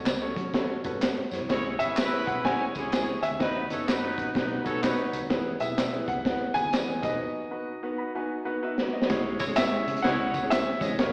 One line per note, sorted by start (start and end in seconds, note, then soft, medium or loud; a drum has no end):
0.00 0.49 D#5 medium
0.05 0.30 C#2 medium
0.05 snare medium
0.05 clap loud
0.05 closed hi-hat medium
0.05 tambourine medium
0.22 0.46 C#4 medium
0.22 0.46 F#4 medium
0.22 0.47 A4 medium
0.22 0.47 C#5 medium
0.36 0.63 F#3 medium
0.36 kick medium
0.36 closed hi-hat medium
0.54 0.75 C#4 medium
0.54 0.75 F#4 medium
0.54 0.75 A4 medium
0.54 0.75 C#5 medium
0.54 kick medium
0.54 snare loud
0.54 closed hi-hat medium
0.54 tambourine soft
0.84 0.91 F#2 medium
0.84 0.97 C#4 medium
0.84 0.97 F#4 medium
0.84 0.97 A4 medium
0.84 0.97 B4 medium
0.84 kick medium
0.84 closed hi-hat medium
0.84 tambourine soft
0.93 1.12 G#2 medium
1.02 1.31 A4 soft
1.02 1.31 F#5 medium
1.02 snare loud
1.02 clap medium
1.02 closed hi-hat medium
1.02 tambourine medium
1.31 1.39 F#2 medium
1.31 1.48 E4 medium
1.31 1.48 C#5 medium
1.31 snare soft
1.31 closed hi-hat medium
1.31 tambourine soft
1.40 1.48 C2 medium
1.49 1.74 C#2 loud
1.49 1.74 G#3 loud
1.49 1.70 C#4 medium
1.49 1.74 C#4 medium
1.49 1.70 E4 medium
1.49 1.74 E4 medium
1.49 1.71 G#4 medium
1.49 1.71 C#5 loud
1.49 1.74 C#5 loud
1.49 kick loud
1.49 snare loud
1.49 closed hi-hat medium
1.49 tambourine soft
1.79 2.18 G#1 medium
1.79 1.94 B3 medium
1.79 1.99 C#4 medium
1.79 1.99 E4 medium
1.79 1.99 G#4 medium
1.79 1.94 G#4 medium
1.79 1.94 B4 medium
1.79 1.99 C#5 medium
1.79 2.24 E5 medium
1.79 closed hi-hat medium
1.79 tambourine medium
1.97 2.43 G#3 loud
1.97 2.43 B3 loud
1.97 2.43 E4 loud
1.97 2.43 B4 loud
1.97 snare loud
1.97 clap loud
1.97 closed hi-hat medium
1.97 tambourine loud
2.12 2.37 C#4 medium
2.12 2.37 E4 medium
2.12 2.37 G#4 medium
2.12 2.37 C#5 medium
2.27 2.54 B1 medium
2.27 2.45 F#5 medium
2.27 kick medium
2.27 closed hi-hat medium
2.45 2.70 G#3 medium
2.45 2.66 C#4 medium
2.45 2.70 C#4 medium
2.45 2.66 E4 medium
2.45 2.70 E4 medium
2.45 2.66 G#4 medium
2.45 2.66 C#5 medium
2.45 2.70 C#5 medium
2.45 3.25 G#5 loud
2.45 kick medium
2.45 snare loud
2.45 closed hi-hat medium
2.75 2.82 C#2 medium
2.75 3.21 E3 medium
2.75 3.21 G#3 medium
2.75 2.87 C#4 medium
2.75 3.21 C#4 medium
2.75 2.87 E4 medium
2.75 2.88 G#4 medium
2.75 3.21 G#4 medium
2.75 2.88 C#5 medium
2.75 kick medium
2.75 closed hi-hat medium
2.75 tambourine soft
2.84 3.03 C#2 medium
2.92 3.30 C#4 medium
2.92 3.30 E4 medium
2.92 3.30 G#4 medium
2.92 3.30 C#5 medium
2.92 snare loud
2.92 clap medium
2.92 closed hi-hat medium
2.92 tambourine medium
3.23 3.30 D#2 medium
3.23 3.41 E5 medium
3.23 closed hi-hat medium
3.23 tambourine soft
3.31 3.38 D2 medium
3.39 3.65 D#2 loud
3.39 3.65 F#3 medium
3.39 3.61 B3 medium
3.39 3.65 B3 loud
3.39 3.61 D#4 medium
3.39 3.65 D#4 medium
3.39 3.61 F#4 medium
3.39 3.61 B4 medium
3.39 3.65 B4 loud
3.39 4.32 D#5 medium
3.39 kick loud
3.39 snare loud
3.39 closed hi-hat medium
3.39 tambourine soft
3.70 4.18 F#1 medium
3.70 3.89 B3 medium
3.70 3.85 C#4 medium
3.70 3.89 D#4 medium
3.70 3.89 F#4 medium
3.70 3.85 A4 medium
3.70 3.89 B4 medium
3.70 3.85 C#5 medium
3.70 closed hi-hat medium
3.70 tambourine medium
3.88 4.33 F#3 loud
3.88 4.33 B3 loud
3.88 4.33 D#4 loud
3.88 4.33 B4 loud
3.88 snare loud
3.88 clap medium
3.88 closed hi-hat medium
3.88 tambourine medium
4.02 4.27 B3 medium
4.02 4.27 D#4 medium
4.02 4.27 F#4 medium
4.02 4.27 B4 medium
4.18 4.32 A1 medium
4.18 kick medium
4.18 closed hi-hat medium
4.35 4.60 B1 medium
4.35 4.60 F#3 medium
4.35 4.59 B3 medium
4.35 4.56 B3 medium
4.35 4.56 D#4 medium
4.35 4.60 D#4 medium
4.35 4.57 F#4 medium
4.35 4.59 B4 medium
4.35 4.57 B4 medium
4.35 kick medium
4.35 snare loud
4.35 closed hi-hat medium
4.35 tambourine soft
4.64 4.92 B1 medium
4.64 4.77 B3 medium
4.64 4.79 C#4 loud
4.64 4.78 D#4 medium
4.64 4.78 F#4 medium
4.64 4.79 A4 loud
4.64 4.78 B4 medium
4.64 4.79 C#5 loud
4.64 kick medium
4.64 closed hi-hat medium
4.64 tambourine soft
4.82 5.19 F#3 medium
4.82 5.20 B3 medium
4.82 5.19 B3 medium
4.82 5.19 D#4 medium
4.82 5.20 D#4 medium
4.82 5.20 F#4 medium
4.82 5.19 B4 loud
4.82 5.20 C#5 medium
4.82 snare loud
4.82 clap medium
4.82 closed hi-hat medium
4.82 tambourine medium
5.13 5.20 C#2 medium
5.13 closed hi-hat medium
5.13 tambourine soft
5.21 5.29 D#2 medium
5.30 5.55 E2 medium
5.30 5.51 B3 medium
5.30 5.51 E4 medium
5.30 5.52 G#4 medium
5.30 5.51 B4 loud
5.30 kick loud
5.30 snare loud
5.30 closed hi-hat medium
5.30 tambourine soft
5.60 5.99 B1 medium
5.60 5.79 B3 medium
5.60 5.79 E4 medium
5.60 5.79 G#4 medium
5.60 5.80 B4 medium
5.60 6.10 E5 medium
5.60 closed hi-hat medium
5.60 tambourine medium
5.78 snare loud
5.78 clap medium
5.78 closed hi-hat medium
5.78 tambourine medium
5.92 6.18 B3 medium
5.92 6.18 E4 medium
5.92 6.18 G#4 medium
5.92 6.18 B4 medium
6.08 6.34 C#2 medium
6.08 6.57 F#5 medium
6.08 kick medium
6.08 closed hi-hat medium
6.24 6.46 B3 medium
6.24 6.46 E4 medium
6.24 6.46 G#4 medium
6.24 6.46 B4 medium
6.24 kick medium
6.24 snare loud
6.24 closed hi-hat medium
6.24 tambourine soft
6.54 6.63 D#2 medium
6.54 6.68 B3 medium
6.54 6.68 E4 medium
6.54 6.68 G#4 medium
6.54 6.68 B4 medium
6.54 6.99 G#5 loud
6.54 kick medium
6.54 closed hi-hat medium
6.54 tambourine soft
6.65 6.72 D#2 medium
6.73 6.98 E2 medium
6.73 7.01 B3 medium
6.73 7.03 E4 medium
6.73 7.04 G#4 medium
6.73 7.03 B4 medium
6.73 snare loud
6.73 clap medium
6.73 closed hi-hat medium
6.73 tambourine medium
7.03 7.17 B1 medium
7.03 7.39 B3 medium
7.03 7.39 D#4 medium
7.03 7.39 F#4 medium
7.03 7.08 A4 medium
7.03 8.41 D#5 medium
7.03 kick medium
7.03 snare soft
7.03 closed hi-hat medium
7.03 tambourine soft
7.09 7.42 B4 medium
7.51 7.70 B3 medium
7.51 7.70 D#4 medium
7.51 7.70 F#4 medium
7.51 7.70 B4 medium
7.83 8.08 B3 medium
7.83 8.08 D#4 medium
7.83 8.08 F#4 medium
7.83 8.08 B4 medium
7.98 8.14 B5 medium
8.15 8.36 B3 medium
8.15 8.36 D#4 medium
8.15 8.37 F#4 medium
8.15 8.37 B4 medium
8.15 8.43 G#5 medium
8.45 8.58 B3 medium
8.45 8.58 D#4 medium
8.45 8.57 F#4 medium
8.45 8.58 B4 medium
8.45 8.62 F#5 medium
8.62 9.00 B3 medium
8.62 9.00 D#4 medium
8.62 9.00 F#4 medium
8.62 9.00 B4 medium
8.62 8.91 E5 medium
8.78 snare medium
8.93 9.09 D#5 medium
9.02 snare medium
9.09 9.34 C#2 loud
9.09 9.41 G#3 loud
9.09 9.41 C#4 medium
9.09 9.41 E4 medium
9.09 9.41 G#4 medium
9.09 9.41 C#5 loud
9.09 kick loud
9.09 snare loud
9.09 closed hi-hat medium
9.09 tambourine soft
9.39 9.54 G#1 medium
9.39 9.45 G#3 medium
9.39 9.45 C#4 medium
9.39 9.45 E4 medium
9.39 9.45 C#5 loud
9.39 kick loud
9.39 closed hi-hat medium
9.39 tambourine medium
9.47 9.63 G#3 medium
9.47 9.63 C#4 medium
9.47 9.63 E4 medium
9.47 9.63 G#4 medium
9.47 9.63 C#5 medium
9.47 closed hi-hat soft
9.56 9.81 G#1 medium
9.56 10.05 E5 loud
9.56 snare loud
9.56 clap loud
9.56 closed hi-hat medium
9.56 tambourine loud
9.71 9.96 G#3 medium
9.71 9.96 C#4 medium
9.71 9.96 E4 medium
9.71 9.96 G#4 medium
9.71 9.96 C#5 medium
9.87 10.06 C#3 loud
9.87 closed hi-hat medium
9.97 closed hi-hat medium
10.02 10.29 C#2 loud
10.02 10.41 G#3 medium
10.02 10.35 G#3 medium
10.02 10.41 C#4 medium
10.02 10.35 C#4 medium
10.02 10.41 E4 medium
10.02 10.35 E4 medium
10.02 10.35 G#4 medium
10.02 10.41 C#5 loud
10.02 10.35 C#5 medium
10.02 10.52 F#5 loud
10.02 snare loud
10.02 closed hi-hat medium
10.02 tambourine soft
10.34 10.60 C#2 medium
10.34 kick medium
10.34 closed hi-hat medium
10.34 tambourine medium
10.43 10.68 G#3 medium
10.43 10.68 C#4 medium
10.43 10.68 E4 medium
10.43 10.68 G#4 medium
10.43 10.68 C#5 medium
10.50 10.82 E5 loud
10.50 snare loud
10.50 clap medium
10.50 closed hi-hat loud
10.50 tambourine medium
10.80 10.88 E2 loud
10.80 10.94 G#3 medium
10.80 10.94 C#4 medium
10.80 10.94 E4 medium
10.80 10.94 G#4 medium
10.80 11.13 C#5 medium
10.80 10.94 D#5 medium
10.80 kick loud
10.80 snare soft
10.80 closed hi-hat medium
10.80 tambourine medium
10.90 10.97 F1 medium
10.98 11.13 F#1 loud
10.98 11.13 A#3 medium
10.98 11.13 C#4 medium
10.98 11.13 F#4 medium
10.98 11.13 A#4 medium
10.98 11.13 C#5 medium
10.98 kick loud
10.98 snare loud
10.98 closed hi-hat medium
10.98 tambourine soft